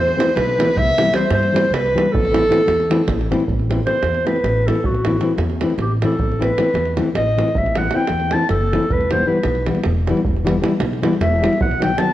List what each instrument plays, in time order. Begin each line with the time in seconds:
Already playing: upright bass E2, violin C5, clarinet C5
0.08 davul high
0.17 nylon-string guitar E3 A3 C4 E4, davul high
0.30 davul high
0.36 upright bass B1, violin B4, clarinet B4, davul high
0.50 davul high
0.59 nylon-string guitar E3 A3 C4 E4, davul high
0.69 davul high
0.76 upright bass C2, violin E5, clarinet E5, davul low
0.89 davul high
0.98 nylon-string guitar E3 G3 C4 E4, davul high
1.07 davul high
1.13 nylon-string guitar E3 G3 C4 E4, clarinet C5, violin C5, davul high
1.31 upright bass G2, violin C5, clarinet C5, davul high
1.43 davul high
1.52 nylon-string guitar E3 G3 C4 E4, davul high
1.65 davul high
1.71 upright bass C2, clarinet B4, violin B4, davul high
1.86 davul high
1.95 nylon-string guitar E3 G3 C4 E4, davul high
2.06 davul high
2.12 upright bass A1, clarinet A4, violin A4, davul low
2.25 davul high
2.32 nylon-string guitar E3 A3 C4 E4, davul high
2.44 davul high
2.49 nylon-string guitar E3 A3 C4 E4, davul high
2.61 davul high
2.67 upright bass E2, davul high
2.80 davul high
2.90 nylon-string guitar E3 A3 C4 E4, davul high
3.07 upright bass A1, davul high, davul low
3.21 davul high
3.31 nylon-string guitar E3 A3 C4 E4, davul high
3.40 davul high
3.48 upright bass A1, davul low
3.59 davul high
3.69 nylon-string guitar E3 A3 C4 E4, davul high
3.86 nylon-string guitar E3 A3 C4 E4, clarinet C5, davul high
4.02 upright bass E2, davul high
4.14 davul high
4.25 nylon-string guitar E3 A3 C4 E4, clarinet B4, davul high
4.36 davul high
4.44 upright bass A1, davul high
4.66 nylon-string guitar E3 A3 C4 E4, clarinet A4, davul high
4.75 davul high
4.84 upright bass A1, clarinet F#4, davul low
4.94 davul high
5.05 nylon-string guitar E3 A3 C4 E4, davul high
5.21 nylon-string guitar E3 A3 C4 E4, davul high
5.38 upright bass E2, davul high
5.50 davul high
5.61 nylon-string guitar E3 A3 C4 E4, davul high
5.70 davul high
5.78 upright bass A1, clarinet G4, davul high
6.02 nylon-string guitar E3 A3 C4 E4, clarinet A4, davul high
6.12 davul high
6.19 upright bass A1, davul low
6.32 davul high
6.39 nylon-string guitar E3 A3 C4 E4, clarinet B4, davul high
6.58 nylon-string guitar E3 A3 C4 E4, davul high
6.74 upright bass E2, davul high
6.86 davul high
6.97 nylon-string guitar E3 A3 C4 E4, davul high
7.15 upright bass A1, clarinet D#5, davul high
7.37 nylon-string guitar E3 A3 C4 E4, davul high
7.48 davul high
7.55 upright bass A1, clarinet E5, davul low
7.66 davul high
7.76 nylon-string guitar E3 A3 C4 E4, clarinet F#5, davul high
7.84 davul high
7.91 nylon-string guitar E3 A3 C4, davul high
7.95 nylon-string guitar E4, clarinet G5
8.01 davul high
8.08 upright bass E2, davul high
8.20 davul high
8.31 nylon-string guitar E3 A3 C4 E4, clarinet A5, davul high
8.49 upright bass F#1, clarinet A4, davul high
8.73 nylon-string guitar E3 A3 C4 E4, davul high
8.83 davul high
8.90 upright bass E1, clarinet B4, davul low
9.01 davul high
9.11 nylon-string guitar E3 G3 B3 E4, clarinet C5, davul high
9.27 nylon-string guitar E3 G3 B3 E4, clarinet B4
9.44 upright bass B1, davul high
9.55 davul high
9.67 nylon-string guitar E3 G3 B3 E4, davul high
9.75 davul high
9.84 upright bass E1, davul high
10.07 nylon-string guitar E3 G3 B3 E4, davul high
10.17 davul high
10.25 upright bass E1, davul low
10.37 davul high
10.45 nylon-string guitar E3 G3 B3 E4, davul high
10.61 nylon-string guitar E3 G3 B3 E4, davul high
10.80 upright bass B1, davul high
10.93 davul high
11.02 nylon-string guitar E3 G3 B3 E4, davul high
11.13 davul high
11.21 upright bass E1, clarinet E5, davul high
11.41 nylon-string guitar E3 G3 B3 E4, davul high
11.53 davul high
11.61 upright bass B1, clarinet F#5, davul low
11.71 davul high
11.80 nylon-string guitar D#3 F#3 B3 D#4, clarinet G5, davul high
11.98 nylon-string guitar D#3 F#3 B3 D#4, clarinet A5, davul high